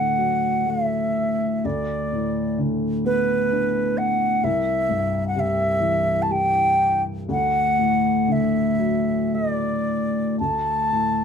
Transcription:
0.00 1.60 D2 soft
0.00 1.12 A2 soft
0.00 1.61 D3 soft
0.00 0.71 F#5 medium
0.18 1.60 F#3 soft
0.66 1.61 A3 soft
0.66 1.67 E5 medium
1.65 4.37 D2 medium
1.65 2.59 D5 medium
2.13 3.91 A2 soft
2.58 4.37 D3 soft
3.05 4.37 B3 soft
3.05 3.99 B4 medium
3.52 4.39 D4 soft
3.98 4.46 F#5 medium
4.44 7.26 C2 medium
4.44 5.27 E5 medium
4.89 6.76 G2 soft
5.28 5.41 F#5 medium
5.35 7.25 C3 soft
5.40 6.24 E5 medium
5.81 7.25 E3 soft
6.22 6.33 A5 medium
6.30 7.26 G3 soft
6.30 7.02 G5 medium
7.28 10.35 D2 medium
7.28 8.34 F#5 medium
7.79 9.83 A2 soft
8.28 10.35 D3 soft
8.32 9.36 E5 medium
8.78 10.35 F#3 soft
9.34 10.37 A3 soft
9.34 9.52 D#5 medium
9.52 10.39 D5 medium
10.39 11.24 D2 soft
10.39 11.24 A5 medium
10.92 11.24 A2 soft

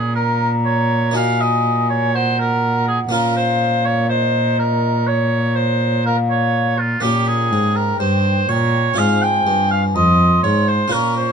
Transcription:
0.00 3.08 A#2 medium
0.00 3.08 A#2 soft
0.00 1.09 A#3 soft
0.00 1.10 C#4 soft
0.00 1.11 F4 soft
0.00 0.14 G#4 medium
0.15 0.51 A#4 medium
0.15 1.16 A#5 medium
0.65 1.14 C#5 medium
1.11 3.06 A#3 soft
1.11 3.07 D#4 soft
1.11 3.08 F#4 soft
1.11 2.14 G#5 medium
1.16 1.42 F5 medium
1.41 1.89 D#5 medium
1.90 2.17 C#5 medium
2.14 2.38 C5 medium
2.14 3.13 F#5 medium
2.39 2.87 A#4 medium
2.88 2.99 G#4 medium
3.09 7.00 A#2 medium
3.09 6.98 A#3 soft
3.09 6.99 C#4 soft
3.09 6.99 F4 soft
3.09 3.36 A#4 medium
3.09 4.11 F5 medium
3.13 7.00 A#2 soft
3.37 3.86 C5 medium
3.85 4.08 C#5 medium
4.09 4.57 C5 medium
4.09 5.09 D#5 medium
4.59 5.09 A#4 medium
5.07 5.57 C#5 medium
5.07 6.04 C#5 medium
5.55 6.05 C5 medium
6.05 6.17 A#4 medium
6.05 6.74 F5 medium
6.30 6.80 C#5 medium
6.79 7.03 F4 medium
7.00 7.53 A#2 medium
7.00 8.93 A#3 soft
7.00 8.93 C#4 soft
7.00 7.29 G4 medium
7.00 8.94 G4 soft
7.00 8.94 G5 medium
7.05 7.49 A#2 soft
7.27 7.77 G#4 medium
7.52 8.00 G#2 medium
7.52 7.97 G#2 soft
7.75 7.99 A#4 medium
7.99 8.45 G2 soft
7.99 8.48 G2 medium
7.99 8.50 C5 medium
8.49 8.94 A#2 soft
8.49 8.97 A#2 medium
8.49 9.00 C#5 medium
8.94 9.46 G#2 soft
8.94 10.86 C4 soft
8.94 10.87 F4 soft
8.94 10.88 C5 soft
8.94 9.97 G#5 medium
8.98 9.43 G#2 soft
8.98 9.24 F5 medium
9.22 9.70 G5 medium
9.47 9.92 G2 soft
9.47 9.95 G2 medium
9.71 9.82 F5 medium
9.95 10.43 F2 medium
9.95 10.40 F2 soft
9.95 10.43 D#5 medium
9.95 10.92 C6 medium
10.43 10.91 G#2 medium
10.43 10.89 G#2 soft
10.43 10.70 C#5 medium
10.68 10.94 C5 medium
10.88 11.32 A#2 soft
10.88 11.32 C#4 soft
10.88 11.32 F4 soft
10.88 11.32 A#4 soft
10.92 11.32 A#2 soft
10.92 11.16 A#4 medium
10.92 11.32 C#6 medium
11.17 11.32 C5 medium

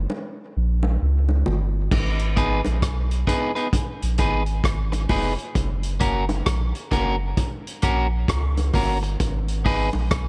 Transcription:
0.10 high bongo medium
0.57 0.98 A#1 loud
0.83 high bongo medium
1.02 1.44 C#2 medium
1.29 high bongo medium
1.46 1.89 G1 medium
1.46 low bongo medium
1.91 2.62 G#1 loud
1.91 kick medium
1.91 crash medium
1.91 high bongo medium
2.19 closed hi-hat medium
2.36 2.59 B3 medium
2.36 2.60 D#4 medium
2.36 2.60 G#4 medium
2.36 2.60 B4 medium
2.36 kick medium
2.36 closed hi-hat medium
2.65 2.82 A#1 medium
2.65 closed hi-hat soft
2.65 high bongo medium
2.82 3.25 B1 medium
2.82 kick loud
2.82 cross-stick loud
2.82 closed hi-hat medium
3.11 closed hi-hat soft
3.27 3.50 B3 medium
3.27 3.51 D#4 medium
3.27 3.51 G#4 medium
3.27 3.51 B4 medium
3.27 kick medium
3.27 closed hi-hat medium
3.27 high bongo medium
3.55 3.68 B3 medium
3.55 3.67 D#4 medium
3.55 3.67 G#4 medium
3.55 3.67 B4 medium
3.55 closed hi-hat soft
3.73 kick loud
3.73 closed hi-hat medium
3.73 high bongo medium
4.02 4.18 A#1 medium
4.02 closed hi-hat medium
4.18 4.61 G#1 medium
4.18 4.41 B3 medium
4.18 4.42 D#4 medium
4.18 4.42 G#4 medium
4.18 4.42 B4 medium
4.18 kick medium
4.18 closed hi-hat medium
4.46 closed hi-hat soft
4.64 5.07 G#1 medium
4.64 kick loud
4.64 cross-stick loud
4.64 closed hi-hat medium
4.92 muted clean electric guitar stroke soft
4.92 closed hi-hat soft
4.92 high bongo medium
5.09 5.37 F1 medium
5.09 5.32 B3 medium
5.09 5.33 D#4 medium
5.09 5.33 G#4 medium
5.09 5.33 B4 medium
5.09 kick medium
5.09 open hi-hat medium
5.09 low bongo medium
5.38 closed hi-hat soft
5.55 6.43 F#1 loud
5.55 kick loud
5.55 closed hi-hat medium
5.55 high bongo medium
5.83 closed hi-hat medium
6.00 6.23 A#3 medium
6.00 6.24 C#4 medium
6.00 6.24 F#4 medium
6.00 6.24 A#4 medium
6.00 kick medium
6.00 closed hi-hat medium
6.29 closed hi-hat soft
6.29 high bongo medium
6.46 6.73 A#1 loud
6.46 kick loud
6.46 cross-stick loud
6.46 closed hi-hat medium
6.75 closed hi-hat soft
6.91 7.34 F#1 loud
6.91 7.14 A#3 medium
6.91 7.15 C#4 medium
6.91 7.15 F#4 medium
6.91 7.15 A#4 medium
6.91 kick medium
6.91 closed hi-hat medium
6.91 high bongo medium
7.37 kick loud
7.37 closed hi-hat medium
7.37 high bongo medium
7.67 closed hi-hat medium
7.82 8.26 A#1 medium
7.82 8.06 A#3 medium
7.82 8.06 C#4 medium
7.82 8.06 F#4 medium
7.82 8.06 A#4 medium
7.82 kick medium
7.82 closed hi-hat medium
8.28 8.71 C#2 medium
8.28 kick loud
8.28 cross-stick loud
8.28 closed hi-hat medium
8.57 closed hi-hat soft
8.57 high bongo medium
8.74 9.17 G1 medium
8.74 8.97 A#3 medium
8.74 8.97 C#4 medium
8.74 8.97 F#4 medium
8.74 8.98 A#4 medium
8.74 kick medium
8.74 open hi-hat medium
8.74 low bongo medium
9.03 muted clean electric guitar stroke soft
9.03 closed hi-hat soft
9.20 9.90 G#1 loud
9.20 kick loud
9.20 closed hi-hat medium
9.20 high bongo medium
9.48 closed hi-hat soft
9.65 9.88 B3 medium
9.65 9.88 D#4 medium
9.65 9.88 G#4 medium
9.65 9.89 B4 loud
9.65 kick medium
9.65 open hi-hat soft
9.93 10.10 A#1 medium
9.93 high bongo medium
10.11 10.29 B1 loud
10.11 kick loud
10.11 cross-stick loud
10.11 closed hi-hat medium

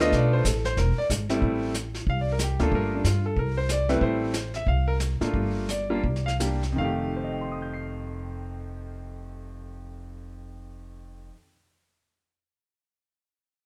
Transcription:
0.00 0.11 D2 medium
0.00 0.42 A3 medium
0.00 0.42 B3 medium
0.00 0.42 D4 medium
0.00 0.43 F4 medium
0.00 0.13 D#5 loud
0.12 0.44 B1 medium
0.12 0.33 D5 medium
0.12 brush sweep medium
0.12 kick soft
0.12 snare soft
0.33 0.45 C5 medium
0.45 0.76 A1 medium
0.45 0.65 A4 medium
0.45 kick soft
0.45 snare medium
0.45 hi-hat pedal medium
0.65 0.77 C5 medium
0.65 snare soft
0.77 0.96 E1 medium
0.77 0.97 A#4 medium
0.77 brush sweep soft
0.77 kick soft
0.77 snare soft
0.98 1.05 D5 medium
0.98 muted upright bass stroke soft
1.10 1.41 G#1 medium
1.10 kick soft
1.10 snare medium
1.10 hi-hat pedal medium
1.29 1.72 G3 medium
1.29 1.72 A3 medium
1.29 1.72 C4 medium
1.29 1.72 E4 medium
1.29 snare soft
1.42 2.03 A1 medium
1.42 brush sweep medium
1.42 kick soft
1.74 snare medium
1.74 hi-hat pedal medium
1.95 snare soft
2.07 2.55 C2 medium
2.07 2.19 F5 medium
2.07 brush sweep soft
2.07 kick soft
2.21 2.30 D5 medium
2.32 2.41 A#4 medium
2.39 snare medium
2.39 hi-hat pedal medium
2.43 2.61 G4 medium
2.59 2.71 D2 medium
2.59 3.02 A3 medium
2.59 3.02 A#3 medium
2.59 2.93 D4 medium
2.59 3.02 F4 medium
2.59 2.73 A4 medium
2.59 snare soft
2.72 3.02 G1 medium
2.72 2.93 A#4 medium
2.72 brush sweep soft
2.72 kick soft
2.95 3.05 D4 medium
3.04 3.34 G2 medium
3.04 3.25 F4 medium
3.04 snare medium
3.04 hi-hat pedal medium
3.26 3.37 A4 medium
3.37 3.98 C2 medium
3.37 3.57 A#4 medium
3.37 brush sweep soft
3.37 kick soft
3.57 3.69 C5 medium
3.69 3.90 D5 medium
3.69 snare medium
3.69 hi-hat pedal medium
3.89 4.31 G3 medium
3.89 4.31 A3 medium
3.89 4.31 C4 medium
3.89 4.32 E4 medium
3.89 4.01 B4 medium
3.89 snare soft
4.01 4.63 A1 medium
4.01 4.51 C5 medium
4.01 brush sweep medium
4.01 kick soft
4.34 snare medium
4.34 hi-hat pedal medium
4.54 4.67 E5 medium
4.54 snare soft
4.67 5.17 C2 medium
4.67 4.87 F5 medium
4.67 brush sweep soft
4.67 kick soft
4.88 4.95 A#4 medium
5.00 snare medium
5.00 hi-hat pedal medium
5.21 5.33 A1 medium
5.21 5.66 A3 medium
5.21 5.66 A#3 medium
5.21 5.66 D4 medium
5.21 5.66 F4 medium
5.21 snare soft
5.34 6.00 G1 medium
5.34 brush sweep medium
5.34 kick soft
5.69 6.23 D5 medium
5.69 snare medium
5.69 hi-hat pedal medium
5.90 6.02 G3 medium
5.90 6.02 A#3 medium
5.90 6.02 D4 medium
5.90 6.02 F4 medium
6.04 6.74 C2 medium
6.04 brush sweep soft
6.04 kick soft
6.16 snare soft
6.26 6.34 F5 medium
6.26 snare soft
6.40 6.61 G3 soft
6.40 6.61 A#3 soft
6.40 6.61 D4 soft
6.40 6.61 G4 medium
6.40 snare medium
6.40 hi-hat pedal medium
6.63 snare soft
6.72 11.30 F2 medium
6.72 11.32 D#3 medium
6.78 11.29 F1 medium
6.78 11.34 A3 medium
6.78 11.30 F5 medium
6.84 11.36 G4 medium
7.16 11.29 C5 soft
7.24 11.33 D#5 soft
7.32 11.37 G5 soft
7.41 11.42 C6 soft
7.51 11.47 D#6 soft
7.62 11.52 G6 soft
7.74 11.58 C7 soft

